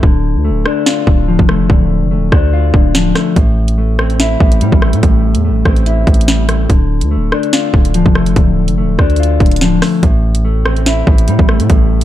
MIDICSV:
0, 0, Header, 1, 4, 480
1, 0, Start_track
1, 0, Key_signature, 0, "minor"
1, 0, Tempo, 416667
1, 35, Time_signature, 4, 2, 24, 8
1, 13872, End_track
2, 0, Start_track
2, 0, Title_t, "Clean electric guitar"
2, 0, Program_c, 0, 27
2, 31, Note_on_c, 0, 50, 91
2, 512, Note_on_c, 0, 57, 77
2, 757, Note_on_c, 0, 62, 94
2, 993, Note_on_c, 0, 65, 80
2, 1221, Note_off_c, 0, 50, 0
2, 1235, Note_on_c, 0, 50, 70
2, 1476, Note_on_c, 0, 53, 93
2, 1701, Note_off_c, 0, 57, 0
2, 1715, Note_on_c, 0, 57, 77
2, 1943, Note_off_c, 0, 50, 0
2, 1956, Note_off_c, 0, 62, 0
2, 1956, Note_on_c, 0, 50, 91
2, 2194, Note_off_c, 0, 65, 0
2, 2418, Note_off_c, 0, 57, 0
2, 2432, Note_on_c, 0, 57, 77
2, 2675, Note_off_c, 0, 53, 0
2, 2676, Note_on_c, 0, 62, 94
2, 2916, Note_on_c, 0, 65, 87
2, 3141, Note_off_c, 0, 50, 0
2, 3155, Note_on_c, 0, 50, 71
2, 3394, Note_on_c, 0, 53, 95
2, 3620, Note_off_c, 0, 57, 0
2, 3633, Note_on_c, 0, 57, 77
2, 3871, Note_off_c, 0, 50, 0
2, 3874, Note_off_c, 0, 53, 0
2, 3874, Note_off_c, 0, 57, 0
2, 3875, Note_off_c, 0, 62, 0
2, 3875, Note_off_c, 0, 65, 0
2, 3875, Note_on_c, 0, 45, 90
2, 4353, Note_on_c, 0, 57, 78
2, 4593, Note_on_c, 0, 60, 100
2, 4836, Note_on_c, 0, 64, 85
2, 5061, Note_off_c, 0, 45, 0
2, 5075, Note_on_c, 0, 45, 73
2, 5317, Note_on_c, 0, 55, 97
2, 5541, Note_off_c, 0, 57, 0
2, 5555, Note_on_c, 0, 57, 78
2, 5781, Note_off_c, 0, 45, 0
2, 5794, Note_off_c, 0, 60, 0
2, 5795, Note_on_c, 0, 45, 97
2, 6035, Note_off_c, 0, 64, 0
2, 6261, Note_off_c, 0, 57, 0
2, 6275, Note_on_c, 0, 57, 77
2, 6512, Note_on_c, 0, 60, 90
2, 6516, Note_off_c, 0, 55, 0
2, 6758, Note_on_c, 0, 64, 82
2, 6979, Note_off_c, 0, 45, 0
2, 6993, Note_on_c, 0, 45, 72
2, 7236, Note_on_c, 0, 55, 92
2, 7459, Note_off_c, 0, 57, 0
2, 7472, Note_on_c, 0, 57, 72
2, 7706, Note_off_c, 0, 55, 0
2, 7711, Note_on_c, 0, 50, 89
2, 7713, Note_off_c, 0, 60, 0
2, 7714, Note_off_c, 0, 45, 0
2, 7714, Note_off_c, 0, 57, 0
2, 7716, Note_off_c, 0, 64, 0
2, 8193, Note_on_c, 0, 57, 76
2, 8436, Note_on_c, 0, 62, 96
2, 8673, Note_on_c, 0, 65, 81
2, 8900, Note_off_c, 0, 50, 0
2, 8914, Note_on_c, 0, 50, 70
2, 9155, Note_on_c, 0, 53, 95
2, 9382, Note_off_c, 0, 57, 0
2, 9396, Note_on_c, 0, 57, 74
2, 9623, Note_off_c, 0, 50, 0
2, 9635, Note_off_c, 0, 62, 0
2, 9637, Note_on_c, 0, 50, 90
2, 9874, Note_off_c, 0, 65, 0
2, 10098, Note_off_c, 0, 57, 0
2, 10111, Note_on_c, 0, 57, 76
2, 10355, Note_off_c, 0, 53, 0
2, 10355, Note_on_c, 0, 62, 95
2, 10594, Note_on_c, 0, 65, 90
2, 10819, Note_off_c, 0, 50, 0
2, 10833, Note_on_c, 0, 50, 70
2, 11072, Note_on_c, 0, 53, 95
2, 11299, Note_off_c, 0, 57, 0
2, 11312, Note_on_c, 0, 57, 77
2, 11551, Note_off_c, 0, 50, 0
2, 11554, Note_off_c, 0, 53, 0
2, 11554, Note_off_c, 0, 57, 0
2, 11554, Note_off_c, 0, 65, 0
2, 11555, Note_off_c, 0, 62, 0
2, 11556, Note_on_c, 0, 45, 93
2, 12034, Note_on_c, 0, 57, 82
2, 12274, Note_on_c, 0, 60, 102
2, 12517, Note_on_c, 0, 64, 86
2, 12740, Note_off_c, 0, 45, 0
2, 12754, Note_on_c, 0, 45, 76
2, 12997, Note_on_c, 0, 55, 101
2, 13222, Note_off_c, 0, 57, 0
2, 13236, Note_on_c, 0, 57, 79
2, 13462, Note_off_c, 0, 45, 0
2, 13474, Note_off_c, 0, 60, 0
2, 13476, Note_on_c, 0, 45, 93
2, 13716, Note_off_c, 0, 64, 0
2, 13872, Note_off_c, 0, 45, 0
2, 13872, Note_off_c, 0, 55, 0
2, 13872, Note_off_c, 0, 57, 0
2, 13872, End_track
3, 0, Start_track
3, 0, Title_t, "808-style bass"
3, 0, Program_c, 1, 38
3, 35, Note_on_c, 1, 26, 105
3, 402, Note_on_c, 1, 38, 95
3, 420, Note_off_c, 1, 26, 0
3, 579, Note_on_c, 1, 26, 101
3, 596, Note_off_c, 1, 38, 0
3, 746, Note_off_c, 1, 26, 0
3, 1234, Note_on_c, 1, 26, 110
3, 1587, Note_off_c, 1, 26, 0
3, 1602, Note_on_c, 1, 29, 102
3, 1941, Note_off_c, 1, 29, 0
3, 1955, Note_on_c, 1, 26, 106
3, 2322, Note_on_c, 1, 29, 96
3, 2339, Note_off_c, 1, 26, 0
3, 2498, Note_on_c, 1, 26, 98
3, 2515, Note_off_c, 1, 29, 0
3, 2666, Note_off_c, 1, 26, 0
3, 2674, Note_on_c, 1, 38, 105
3, 3135, Note_off_c, 1, 38, 0
3, 3154, Note_on_c, 1, 26, 108
3, 3615, Note_off_c, 1, 26, 0
3, 3875, Note_on_c, 1, 33, 112
3, 5029, Note_off_c, 1, 33, 0
3, 5074, Note_on_c, 1, 33, 111
3, 5315, Note_on_c, 1, 45, 102
3, 5332, Note_off_c, 1, 33, 0
3, 5436, Note_off_c, 1, 45, 0
3, 5441, Note_on_c, 1, 33, 111
3, 5683, Note_on_c, 1, 45, 101
3, 5700, Note_off_c, 1, 33, 0
3, 5789, Note_off_c, 1, 45, 0
3, 5795, Note_on_c, 1, 33, 107
3, 6162, Note_on_c, 1, 40, 100
3, 6179, Note_off_c, 1, 33, 0
3, 6339, Note_on_c, 1, 33, 102
3, 6356, Note_off_c, 1, 40, 0
3, 6506, Note_off_c, 1, 33, 0
3, 6514, Note_on_c, 1, 33, 108
3, 6975, Note_off_c, 1, 33, 0
3, 6993, Note_on_c, 1, 33, 108
3, 7685, Note_off_c, 1, 33, 0
3, 7714, Note_on_c, 1, 26, 108
3, 8081, Note_on_c, 1, 38, 99
3, 8098, Note_off_c, 1, 26, 0
3, 8258, Note_on_c, 1, 26, 97
3, 8275, Note_off_c, 1, 38, 0
3, 8426, Note_off_c, 1, 26, 0
3, 8913, Note_on_c, 1, 26, 104
3, 9266, Note_off_c, 1, 26, 0
3, 9281, Note_on_c, 1, 29, 102
3, 9620, Note_off_c, 1, 29, 0
3, 9634, Note_on_c, 1, 26, 109
3, 10002, Note_on_c, 1, 29, 99
3, 10019, Note_off_c, 1, 26, 0
3, 10178, Note_on_c, 1, 26, 101
3, 10195, Note_off_c, 1, 29, 0
3, 10346, Note_off_c, 1, 26, 0
3, 10353, Note_on_c, 1, 38, 106
3, 10815, Note_off_c, 1, 38, 0
3, 10833, Note_on_c, 1, 26, 105
3, 11294, Note_off_c, 1, 26, 0
3, 11554, Note_on_c, 1, 33, 115
3, 12708, Note_off_c, 1, 33, 0
3, 12753, Note_on_c, 1, 33, 112
3, 12995, Note_on_c, 1, 45, 101
3, 13012, Note_off_c, 1, 33, 0
3, 13116, Note_off_c, 1, 45, 0
3, 13121, Note_on_c, 1, 33, 109
3, 13362, Note_on_c, 1, 45, 100
3, 13379, Note_off_c, 1, 33, 0
3, 13469, Note_off_c, 1, 45, 0
3, 13474, Note_on_c, 1, 33, 112
3, 13860, Note_off_c, 1, 33, 0
3, 13872, End_track
4, 0, Start_track
4, 0, Title_t, "Drums"
4, 35, Note_on_c, 9, 36, 105
4, 150, Note_off_c, 9, 36, 0
4, 755, Note_on_c, 9, 37, 101
4, 871, Note_off_c, 9, 37, 0
4, 995, Note_on_c, 9, 38, 111
4, 1110, Note_off_c, 9, 38, 0
4, 1233, Note_on_c, 9, 36, 101
4, 1349, Note_off_c, 9, 36, 0
4, 1602, Note_on_c, 9, 36, 89
4, 1715, Note_on_c, 9, 37, 97
4, 1717, Note_off_c, 9, 36, 0
4, 1830, Note_off_c, 9, 37, 0
4, 1955, Note_on_c, 9, 36, 104
4, 2070, Note_off_c, 9, 36, 0
4, 2674, Note_on_c, 9, 36, 95
4, 2675, Note_on_c, 9, 37, 97
4, 2789, Note_off_c, 9, 36, 0
4, 2790, Note_off_c, 9, 37, 0
4, 3154, Note_on_c, 9, 36, 100
4, 3269, Note_off_c, 9, 36, 0
4, 3395, Note_on_c, 9, 38, 116
4, 3511, Note_off_c, 9, 38, 0
4, 3634, Note_on_c, 9, 37, 101
4, 3634, Note_on_c, 9, 38, 70
4, 3749, Note_off_c, 9, 37, 0
4, 3749, Note_off_c, 9, 38, 0
4, 3875, Note_on_c, 9, 36, 100
4, 3875, Note_on_c, 9, 42, 86
4, 3990, Note_off_c, 9, 36, 0
4, 3990, Note_off_c, 9, 42, 0
4, 4240, Note_on_c, 9, 42, 71
4, 4355, Note_off_c, 9, 42, 0
4, 4595, Note_on_c, 9, 37, 99
4, 4711, Note_off_c, 9, 37, 0
4, 4722, Note_on_c, 9, 42, 43
4, 4834, Note_off_c, 9, 42, 0
4, 4834, Note_on_c, 9, 42, 70
4, 4835, Note_on_c, 9, 38, 115
4, 4949, Note_off_c, 9, 42, 0
4, 4950, Note_off_c, 9, 38, 0
4, 5073, Note_on_c, 9, 36, 101
4, 5189, Note_off_c, 9, 36, 0
4, 5204, Note_on_c, 9, 42, 86
4, 5311, Note_off_c, 9, 42, 0
4, 5311, Note_on_c, 9, 42, 83
4, 5426, Note_off_c, 9, 42, 0
4, 5441, Note_on_c, 9, 36, 91
4, 5554, Note_on_c, 9, 37, 99
4, 5557, Note_off_c, 9, 36, 0
4, 5669, Note_off_c, 9, 37, 0
4, 5681, Note_on_c, 9, 42, 81
4, 5794, Note_off_c, 9, 42, 0
4, 5794, Note_on_c, 9, 42, 83
4, 5795, Note_on_c, 9, 36, 106
4, 5910, Note_off_c, 9, 36, 0
4, 5910, Note_off_c, 9, 42, 0
4, 6159, Note_on_c, 9, 42, 73
4, 6275, Note_off_c, 9, 42, 0
4, 6514, Note_on_c, 9, 36, 101
4, 6514, Note_on_c, 9, 37, 99
4, 6629, Note_off_c, 9, 36, 0
4, 6630, Note_off_c, 9, 37, 0
4, 6641, Note_on_c, 9, 42, 58
4, 6754, Note_off_c, 9, 42, 0
4, 6754, Note_on_c, 9, 42, 57
4, 6869, Note_off_c, 9, 42, 0
4, 6993, Note_on_c, 9, 36, 106
4, 6994, Note_on_c, 9, 42, 46
4, 7074, Note_off_c, 9, 42, 0
4, 7074, Note_on_c, 9, 42, 62
4, 7108, Note_off_c, 9, 36, 0
4, 7154, Note_off_c, 9, 42, 0
4, 7154, Note_on_c, 9, 42, 80
4, 7235, Note_on_c, 9, 38, 116
4, 7269, Note_off_c, 9, 42, 0
4, 7350, Note_off_c, 9, 38, 0
4, 7473, Note_on_c, 9, 42, 82
4, 7474, Note_on_c, 9, 37, 96
4, 7588, Note_off_c, 9, 42, 0
4, 7589, Note_off_c, 9, 37, 0
4, 7714, Note_on_c, 9, 36, 103
4, 7714, Note_on_c, 9, 42, 87
4, 7829, Note_off_c, 9, 36, 0
4, 7830, Note_off_c, 9, 42, 0
4, 8079, Note_on_c, 9, 42, 73
4, 8195, Note_off_c, 9, 42, 0
4, 8435, Note_on_c, 9, 37, 101
4, 8550, Note_off_c, 9, 37, 0
4, 8561, Note_on_c, 9, 42, 43
4, 8674, Note_off_c, 9, 42, 0
4, 8674, Note_on_c, 9, 38, 118
4, 8674, Note_on_c, 9, 42, 68
4, 8789, Note_off_c, 9, 42, 0
4, 8790, Note_off_c, 9, 38, 0
4, 8913, Note_on_c, 9, 36, 103
4, 9028, Note_off_c, 9, 36, 0
4, 9043, Note_on_c, 9, 42, 87
4, 9150, Note_off_c, 9, 42, 0
4, 9150, Note_on_c, 9, 42, 84
4, 9265, Note_off_c, 9, 42, 0
4, 9281, Note_on_c, 9, 36, 89
4, 9394, Note_on_c, 9, 37, 97
4, 9396, Note_off_c, 9, 36, 0
4, 9509, Note_off_c, 9, 37, 0
4, 9520, Note_on_c, 9, 42, 81
4, 9633, Note_off_c, 9, 42, 0
4, 9633, Note_on_c, 9, 42, 88
4, 9634, Note_on_c, 9, 36, 104
4, 9749, Note_off_c, 9, 36, 0
4, 9749, Note_off_c, 9, 42, 0
4, 9999, Note_on_c, 9, 42, 74
4, 10114, Note_off_c, 9, 42, 0
4, 10353, Note_on_c, 9, 36, 97
4, 10354, Note_on_c, 9, 37, 101
4, 10468, Note_off_c, 9, 36, 0
4, 10469, Note_off_c, 9, 37, 0
4, 10481, Note_on_c, 9, 42, 43
4, 10556, Note_off_c, 9, 42, 0
4, 10556, Note_on_c, 9, 42, 58
4, 10636, Note_off_c, 9, 42, 0
4, 10636, Note_on_c, 9, 42, 69
4, 10751, Note_off_c, 9, 42, 0
4, 10833, Note_on_c, 9, 36, 103
4, 10833, Note_on_c, 9, 42, 45
4, 10897, Note_off_c, 9, 42, 0
4, 10897, Note_on_c, 9, 42, 57
4, 10948, Note_off_c, 9, 36, 0
4, 10961, Note_off_c, 9, 42, 0
4, 10961, Note_on_c, 9, 42, 68
4, 11017, Note_off_c, 9, 42, 0
4, 11017, Note_on_c, 9, 42, 76
4, 11074, Note_on_c, 9, 38, 122
4, 11132, Note_off_c, 9, 42, 0
4, 11189, Note_off_c, 9, 38, 0
4, 11313, Note_on_c, 9, 46, 61
4, 11314, Note_on_c, 9, 37, 97
4, 11314, Note_on_c, 9, 38, 69
4, 11428, Note_off_c, 9, 46, 0
4, 11429, Note_off_c, 9, 37, 0
4, 11429, Note_off_c, 9, 38, 0
4, 11554, Note_on_c, 9, 36, 105
4, 11554, Note_on_c, 9, 42, 89
4, 11669, Note_off_c, 9, 36, 0
4, 11669, Note_off_c, 9, 42, 0
4, 11920, Note_on_c, 9, 42, 76
4, 12035, Note_off_c, 9, 42, 0
4, 12275, Note_on_c, 9, 37, 105
4, 12390, Note_off_c, 9, 37, 0
4, 12401, Note_on_c, 9, 42, 44
4, 12514, Note_off_c, 9, 42, 0
4, 12514, Note_on_c, 9, 42, 70
4, 12515, Note_on_c, 9, 38, 118
4, 12629, Note_off_c, 9, 42, 0
4, 12630, Note_off_c, 9, 38, 0
4, 12753, Note_on_c, 9, 36, 105
4, 12868, Note_off_c, 9, 36, 0
4, 12884, Note_on_c, 9, 42, 91
4, 12991, Note_off_c, 9, 42, 0
4, 12991, Note_on_c, 9, 42, 87
4, 13106, Note_off_c, 9, 42, 0
4, 13121, Note_on_c, 9, 36, 93
4, 13234, Note_on_c, 9, 37, 100
4, 13236, Note_off_c, 9, 36, 0
4, 13349, Note_off_c, 9, 37, 0
4, 13360, Note_on_c, 9, 42, 87
4, 13474, Note_off_c, 9, 42, 0
4, 13474, Note_on_c, 9, 36, 110
4, 13474, Note_on_c, 9, 42, 87
4, 13589, Note_off_c, 9, 42, 0
4, 13590, Note_off_c, 9, 36, 0
4, 13872, End_track
0, 0, End_of_file